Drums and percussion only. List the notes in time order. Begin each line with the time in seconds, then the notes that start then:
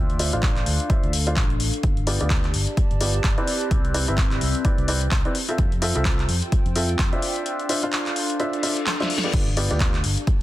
0.10 closed hi-hat
0.19 open hi-hat
0.33 closed hi-hat
0.43 kick, clap, closed hi-hat
0.56 clap, closed hi-hat
0.66 open hi-hat
0.80 closed hi-hat
0.90 kick, closed hi-hat
1.03 closed hi-hat
1.13 open hi-hat
1.27 closed hi-hat
1.36 kick, clap, closed hi-hat
1.50 closed hi-hat
1.60 open hi-hat
1.74 closed hi-hat
1.83 kick, closed hi-hat
1.97 closed hi-hat
2.07 open hi-hat
2.21 closed hi-hat
2.30 kick, clap, closed hi-hat
2.44 clap, closed hi-hat
2.54 open hi-hat
2.67 closed hi-hat
2.77 kick, closed hi-hat
2.91 closed hi-hat
3.01 open hi-hat
3.14 closed hi-hat
3.24 kick, clap, closed hi-hat
3.38 closed hi-hat
3.47 open hi-hat
3.61 closed hi-hat
3.71 kick, closed hi-hat
3.85 closed hi-hat
3.94 open hi-hat
4.08 closed hi-hat
4.18 kick, clap, closed hi-hat
4.31 clap, closed hi-hat
4.41 open hi-hat
4.55 closed hi-hat
4.65 kick, closed hi-hat
4.78 closed hi-hat
4.88 open hi-hat
5.02 closed hi-hat
5.11 kick, clap, closed hi-hat
5.25 closed hi-hat
5.35 open hi-hat
5.49 closed hi-hat
5.58 kick, closed hi-hat
5.72 closed hi-hat
5.82 open hi-hat
5.96 closed hi-hat
6.05 kick, clap, closed hi-hat
6.19 clap, closed hi-hat
6.29 open hi-hat
6.42 closed hi-hat
6.52 kick, closed hi-hat
6.66 closed hi-hat
6.76 open hi-hat
6.89 closed hi-hat
6.99 kick, clap, closed hi-hat
7.13 closed hi-hat
7.22 open hi-hat
7.36 closed hi-hat
7.46 closed hi-hat
7.59 closed hi-hat
7.69 open hi-hat
7.83 closed hi-hat
7.93 clap, closed hi-hat
8.06 clap, closed hi-hat
8.16 open hi-hat
8.30 closed hi-hat
8.40 closed hi-hat
8.53 closed hi-hat
8.63 open hi-hat
8.77 closed hi-hat
8.87 snare, clap, closed hi-hat
9.00 snare, closed hi-hat
9.10 open hi-hat
9.18 snare
9.24 closed hi-hat
9.33 kick, closed hi-hat, crash
9.47 closed hi-hat
9.57 open hi-hat
9.71 closed hi-hat
9.80 kick, clap, closed hi-hat
9.94 clap, closed hi-hat
10.04 open hi-hat
10.17 closed hi-hat
10.27 kick, closed hi-hat